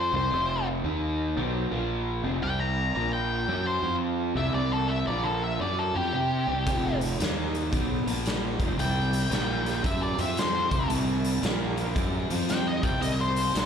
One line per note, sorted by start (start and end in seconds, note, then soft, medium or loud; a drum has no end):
0.00 0.11 F3 medium
0.00 0.12 C4 medium
0.00 0.12 F4 loud
0.00 0.14 C5 medium
0.12 0.30 C2 loud
0.12 0.30 C3 medium
0.12 0.30 G3 medium
0.12 0.31 C4 loud
0.12 0.28 D4 medium
0.12 0.28 E4 medium
0.12 0.28 G4 medium
0.12 0.28 A#4 medium
0.16 0.66 C5 medium
0.30 0.80 F1 medium
0.30 0.83 F2 loud
0.30 0.83 C3 loud
0.30 0.84 F3 loud
0.30 0.84 C4 medium
0.30 0.84 D#4 medium
0.30 0.85 G4 medium
0.30 0.85 A4 medium
0.84 1.33 D#2 medium
0.84 1.36 D#3 medium
0.84 1.37 A#3 medium
0.84 1.30 A#3 medium
0.84 1.37 D#4 loud
0.84 1.30 D#4 medium
0.84 1.31 A#4 medium
0.84 1.30 D#5 medium
1.37 1.69 B1 medium
1.37 1.70 B2 medium
1.37 1.70 F#3 medium
1.37 1.70 B3 medium
1.37 1.64 D#4 loud
1.37 1.65 G4 medium
1.37 1.64 A4 medium
1.37 1.65 C5 loud
1.70 2.20 A#1 medium
1.70 2.23 A#2 medium
1.70 2.23 F3 medium
1.70 2.10 A#3 medium
1.70 2.24 A#3 loud
1.70 2.10 F4 medium
1.70 2.10 A#4 medium
1.70 2.11 F5 medium
2.23 2.41 F1 loud
2.23 2.42 F2 loud
2.23 2.41 C3 medium
2.23 2.41 F3 medium
2.23 2.39 D#4 medium
2.23 2.39 G4 medium
2.23 2.39 A4 medium
2.23 2.40 C5 medium
2.42 2.91 C2 medium
2.42 2.94 C3 loud
2.42 2.95 G3 loud
2.42 2.95 C4 loud
2.42 2.96 E4 medium
2.42 2.96 G4 medium
2.42 2.95 A#4 medium
2.42 2.96 D5 medium
2.42 2.60 G5 medium
2.60 3.12 A#5 medium
2.95 3.45 A#1 medium
2.95 3.48 A#2 medium
2.95 3.48 F3 medium
2.95 3.48 A#3 loud
2.95 3.41 A#3 medium
2.95 3.42 F4 medium
2.95 3.42 A#4 medium
2.95 3.42 F5 medium
3.13 3.65 G5 medium
3.48 3.81 F#2 medium
3.48 3.82 F#3 medium
3.48 3.82 C#4 medium
3.48 3.76 E4 medium
3.48 3.82 F#4 medium
3.48 3.77 G4 medium
3.48 3.76 A#4 medium
3.48 3.77 D5 medium
3.67 3.95 C5 medium
3.83 4.32 F2 medium
3.83 4.35 F3 medium
3.83 4.22 C4 medium
3.83 4.35 C4 medium
3.83 4.23 F4 medium
3.83 4.36 F4 loud
3.83 4.23 C5 medium
3.83 4.23 F5 medium
4.35 4.53 C2 loud
4.35 4.54 C3 medium
4.35 4.54 G3 medium
4.35 4.54 C4 loud
4.35 4.97 E4 medium
4.35 4.97 G4 medium
4.35 4.97 A#4 medium
4.35 4.97 D5 medium
4.35 4.54 E5 medium
4.54 5.04 C2 medium
4.54 5.08 C3 loud
4.54 5.08 G3 loud
4.54 5.08 C4 loud
4.54 4.72 D5 medium
4.72 4.89 A4 medium
4.88 5.06 E5 medium
5.07 5.57 A#1 medium
5.07 5.60 A#2 medium
5.07 5.60 F3 loud
5.07 5.61 A#3 medium
5.07 5.54 A#3 medium
5.07 5.54 F4 medium
5.07 5.54 A#4 medium
5.07 5.25 D5 medium
5.07 5.54 F5 medium
5.23 5.41 A4 medium
5.44 5.60 E5 medium
5.60 5.92 F#2 medium
5.60 5.94 F#3 medium
5.60 5.94 C#4 medium
5.60 6.06 D4 medium
5.60 6.06 E4 medium
5.60 5.94 F#4 medium
5.60 6.06 G4 medium
5.60 6.07 A#4 medium
5.60 5.78 D5 medium
5.79 5.96 A4 medium
5.95 6.12 F2 medium
5.95 6.13 F3 medium
5.95 6.12 C4 medium
5.95 6.13 F4 medium
5.95 6.99 G4 medium
6.13 6.45 C3 medium
6.13 6.47 C4 medium
6.13 6.52 D4 medium
6.13 6.52 E4 medium
6.13 6.52 G4 medium
6.13 6.47 G4 medium
6.13 6.52 A#4 medium
6.13 6.47 C5 medium
6.47 6.65 C2 medium
6.47 6.66 C3 medium
6.47 6.66 G3 medium
6.47 6.66 C4 medium
6.65 7.16 F1 medium
6.65 7.19 F2 medium
6.65 7.19 C3 medium
6.65 7.19 F3 loud
6.65 7.19 C4 medium
6.65 7.18 D#4 medium
6.65 7.19 G4 medium
6.65 7.19 A4 medium
6.65 kick medium
6.65 closed hi-hat medium
7.01 closed hi-hat medium
7.19 7.69 D#2 medium
7.19 7.72 D#3 medium
7.19 7.64 A#3 medium
7.19 7.72 A#3 medium
7.19 7.65 D#4 medium
7.19 7.72 D#4 medium
7.19 7.65 A#4 medium
7.19 7.65 D#5 medium
7.19 snare loud
7.19 closed hi-hat medium
7.55 closed hi-hat medium
7.72 8.04 B1 medium
7.72 8.06 B2 medium
7.72 8.06 F#3 medium
7.72 8.06 B3 medium
7.72 8.00 D#4 medium
7.72 7.99 G4 medium
7.72 8.00 A4 medium
7.72 8.00 C5 loud
7.72 kick loud
7.72 closed hi-hat medium
8.05 8.56 A#1 medium
8.05 8.59 A#2 medium
8.05 8.59 F3 medium
8.05 8.45 A#3 medium
8.05 8.59 A#3 loud
8.05 8.46 F4 medium
8.05 8.45 A#4 medium
8.05 8.46 F5 medium
8.05 closed hi-hat medium
8.26 snare loud
8.26 closed hi-hat medium
8.59 8.77 F1 medium
8.59 8.78 F2 medium
8.59 8.76 C3 medium
8.59 8.78 F3 loud
8.59 8.76 D#4 medium
8.59 8.75 G4 medium
8.59 8.76 A4 medium
8.59 8.76 C5 medium
8.59 kick medium
8.59 closed hi-hat medium
8.78 9.27 C2 medium
8.78 9.30 C3 loud
8.78 9.31 G3 loud
8.78 9.31 C4 loud
8.78 9.31 E4 medium
8.78 9.31 G4 medium
8.78 9.30 A#4 medium
8.78 9.32 D5 medium
8.78 9.82 G5 loud
8.78 closed hi-hat medium
9.13 closed hi-hat medium
9.30 9.80 A#1 medium
9.30 9.83 A#2 medium
9.30 9.84 F3 loud
9.30 9.76 A#3 medium
9.30 9.84 A#3 loud
9.30 9.77 F4 medium
9.30 9.77 A#4 medium
9.30 9.77 F5 medium
9.30 snare loud
9.30 closed hi-hat medium
9.66 snare soft
9.66 closed hi-hat medium
9.83 10.16 F#2 medium
9.83 10.17 F#3 medium
9.83 10.17 C#4 medium
9.83 10.11 E4 medium
9.83 10.17 F#4 medium
9.83 10.11 G4 medium
9.83 10.11 A#4 medium
9.83 10.12 D5 medium
9.83 10.02 E5 medium
9.83 kick loud
9.83 closed hi-hat medium
10.03 10.19 D5 medium
10.18 10.68 F2 medium
10.18 10.70 F3 medium
10.18 10.58 C4 medium
10.18 10.70 C4 medium
10.18 10.58 F4 medium
10.18 10.71 F4 medium
10.18 10.58 C5 medium
10.18 10.37 E5 medium
10.18 10.58 F5 medium
10.18 closed hi-hat medium
10.37 10.89 C5 medium
10.37 snare loud
10.37 closed hi-hat medium
10.71 10.89 C2 loud
10.71 10.88 C3 loud
10.71 10.89 G3 medium
10.71 10.89 C4 medium
10.71 11.32 E4 medium
10.71 11.32 G4 medium
10.71 11.32 A#4 medium
10.71 11.32 D5 medium
10.71 kick medium
10.71 closed hi-hat medium
10.89 11.39 C2 medium
10.89 11.42 C3 loud
10.89 11.42 G3 medium
10.89 11.42 C4 loud
10.89 closed hi-hat medium
11.24 closed hi-hat medium
11.42 11.92 A#1 medium
11.42 11.95 A#2 medium
11.42 11.95 F3 loud
11.42 11.95 A#3 loud
11.42 11.89 A#3 medium
11.42 11.89 F4 medium
11.42 11.89 A#4 medium
11.42 11.89 F5 loud
11.42 snare loud
11.42 closed hi-hat medium
11.77 closed hi-hat medium
11.95 12.28 F#2 medium
11.95 12.29 F#3 medium
11.95 12.29 C#4 loud
11.95 12.24 E4 loud
11.95 12.29 F#4 medium
11.95 12.24 G4 medium
11.95 12.24 A#4 medium
11.95 12.24 D5 loud
11.95 kick loud
11.95 closed hi-hat medium
12.30 12.80 F2 medium
12.30 12.82 F3 medium
12.30 12.82 C4 loud
12.30 12.70 C4 medium
12.30 12.69 F4 medium
12.30 12.83 F4 medium
12.30 12.70 C5 medium
12.30 12.70 F5 loud
12.30 closed hi-hat medium
12.49 12.67 G5 loud
12.49 snare loud
12.49 closed hi-hat medium
12.67 12.84 D#5 medium
12.83 13.01 C2 loud
12.83 13.00 C3 medium
12.83 13.01 G3 medium
12.83 13.01 C4 loud
12.83 13.45 E4 medium
12.83 13.45 G4 medium
12.83 13.45 A#4 medium
12.83 13.45 D5 medium
12.83 13.01 G5 medium
12.83 kick medium
12.83 closed hi-hat medium
13.01 13.51 C2 medium
13.01 13.54 C3 medium
13.01 13.55 G3 loud
13.01 13.54 C4 loud
13.01 13.19 D#5 medium
13.01 closed hi-hat medium
13.21 13.66 C5 medium
13.36 closed hi-hat medium
13.54 13.66 A#1 medium
13.54 13.66 A#2 medium
13.54 13.66 F3 loud
13.54 13.66 A#3 loud
13.54 13.66 A#3 medium
13.54 13.66 F4 medium
13.54 13.66 A#4 medium
13.54 13.66 F5 medium
13.54 snare loud
13.54 closed hi-hat medium